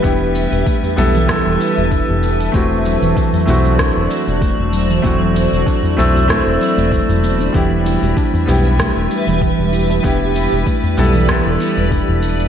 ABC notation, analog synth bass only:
X:1
M:4/4
L:1/16
Q:"Swing 16ths" 1/4=96
K:Em
V:1 name="Analog synth bass" clef=bass
E,,,3 E,,, z2 B,,,3 E,,, z E,,,2 E,,,3 | E,,,3 E,,, z2 B,,,3 E,,, z E,,,2 E,,,3 | E,,,3 E,,, z2 B,,,3 E,,, z E,,,2 E,,,3 | E,,,3 E,,, z2 B,,,3 E,,, z E,,,2 E,,,3 |
E,,,3 E,,, z2 B,,,3 E,,, z E,,,2 E,,,3 |]